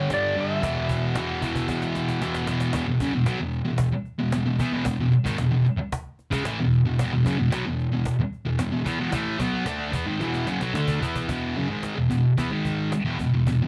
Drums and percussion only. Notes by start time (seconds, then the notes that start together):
0.10 cajon slap
0.63 cajon bass
0.89 cajon bass
1.15 cajon slap
1.42 cajon bass
1.55 cajon bass
1.68 cajon bass, cajon slap
1.82 cajon slap
1.95 cajon slap
2.09 cajon slap
2.22 cajon slap
2.35 cajon slap
2.47 cajon slap
2.60 cajon slap
2.73 cajon bass, cajon slap
3.00 cajon bass
3.26 cajon slap
3.53 cajon slap
3.78 cajon bass, cajon slap
4.05 cajon slap
4.32 cajon slap
4.59 cajon bass
4.85 cajon bass, cajon slap
5.12 cajon slap
5.26 cajon bass
5.38 cajon slap
5.66 cajon slap
5.92 cajon bass, cajon slap
6.19 cajon slap
6.33 cajon bass
6.45 cajon slap
6.73 cajon slap
6.99 cajon bass, cajon slap
7.26 cajon bass
7.52 cajon slap
7.79 cajon slap
8.05 cajon bass, cajon slap
8.33 cajon slap
8.59 cajon slap
8.86 cajon bass
9.12 cajon bass, cajon slap
9.40 cajon bass
9.66 cajon slap
9.93 cajon bass
10.21 cajon slap
10.34 cajon slap
10.47 cajon slap
10.61 cajon slap
10.75 cajon slap
10.88 cajon bass
11.03 cajon bass
11.16 cajon bass
11.29 cajon bass
11.83 cajon slap
12.11 cajon bass
12.38 cajon bass
12.65 cajon bass
12.92 cajon slap
13.19 cajon bass
13.47 cajon bass